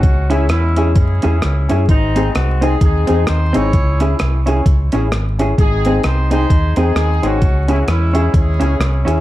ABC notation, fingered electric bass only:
X:1
M:4/4
L:1/8
Q:"Swing" 1/4=130
K:C#m
V:1 name="Fingered electric bass" clef=bass
C,,2 E,,2 F,, E,, C,, F,, | G,,,2 ^B,,,2 D,, E,, D,, G,,, | C,,2 ^B,,,2 C,, A,,, G,,,2 | G,,,2 ^B,,,2 D,, E,, D,, G,,, |
C,,2 E,,2 D,, C,, ^B,,, D,, |]